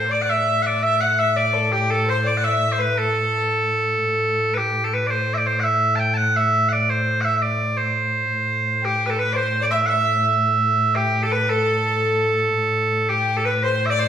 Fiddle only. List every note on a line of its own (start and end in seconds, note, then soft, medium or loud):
0.10 0.31 D5 medium
0.29 0.83 E5 medium
0.83 1.02 E5 medium
1.01 1.18 F#5 medium
1.18 1.38 E5 medium
1.36 1.55 D5 medium
1.54 1.71 A4 medium
1.71 1.92 G4 medium
1.90 2.07 A4 medium
2.08 2.24 C5 medium
2.25 2.45 D5 medium
2.44 2.80 E5 medium
2.79 2.96 B4 medium
2.97 3.82 A4 medium
8.82 9.11 G4 medium
9.09 9.17 A4 medium
9.17 9.36 B4 medium
9.34 9.60 C5 medium
9.61 9.66 D5 medium
9.71 9.79 E5 medium
9.89 10.26 E5 medium
10.96 11.21 G4 medium
11.23 11.34 A4 medium
11.32 11.51 B4 medium
11.50 12.38 A4 medium
13.09 13.38 G4 medium
13.36 13.45 A4 medium
13.45 13.53 B4 medium
13.63 13.87 C5 medium
13.90 14.08 D5 loud